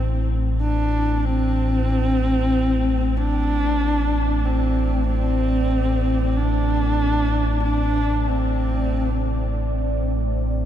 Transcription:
Already playing: A1 A2 A3 C4 E4 C5
0.62 D4
1.25 C4
1.90 D5
3.18 D4
4.46 C4
5.08 C4
6.37 D4
7.64 D4
8.27 C4

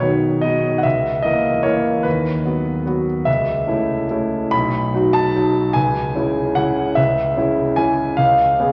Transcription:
Already playing: B1 B4
0.00 D#3 B3 F#4 C#5
0.41 D#3 B3 F#4 D#5
0.78 F#5
0.83 C#2 E5
1.23 E3 A#3 A#4 D#5
1.63 E3 A#3 A#4 C#5
2.03 D#2 B4
2.45 F#3 B3 F#4
2.86 F#3 B3 F#4
3.25 C#2 E5
3.67 A3 C#4 E4
4.11 A3 C#4 E4
4.51 B1 B5
4.94 F#3 D#4 F#4
5.13 A5
5.35 F#3 D#4 F#4
5.73 C#2 G#5
6.16 C#3 C#4 E4
6.55 C#3 C#4 E4 F#5
6.95 C#2 E5
7.37 C#3 C#4 E4
7.76 C#3 C#4 E4 G#5
8.17 C#2 F5
8.60 C#3 B3 G#4

